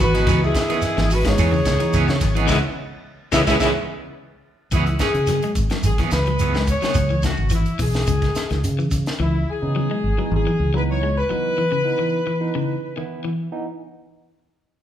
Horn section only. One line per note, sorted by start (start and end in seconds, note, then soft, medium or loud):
0.02 0.40 B4 loud
0.45 1.12 G#4 loud
1.13 1.26 B4 loud
1.28 2.46 C#5 loud
2.51 2.57 G#4 loud
2.51 2.57 B4 loud
2.51 2.57 C#5 loud
3.35 3.41 G#4 loud
3.35 3.41 B4 loud
3.35 3.41 C#5 loud
3.51 3.57 G#4 loud
3.51 3.57 B4 loud
3.51 3.57 C#5 loud
3.63 3.70 G#4 loud
3.63 3.70 B4 loud
3.63 3.70 C#5 medium
4.74 4.99 E4 medium
5.00 5.52 G#4 loud
5.85 5.97 G#4 medium
6.13 6.64 B4 loud
6.70 7.21 C#5 loud
7.24 7.50 F#4 medium
7.54 7.79 E4 medium
7.81 8.60 G#4 medium
9.21 9.46 E4 medium
9.50 10.32 G#4 loud
10.34 10.72 G#4 medium
10.77 10.82 B4 loud
10.91 11.15 C#5 medium
11.18 13.07 B4 loud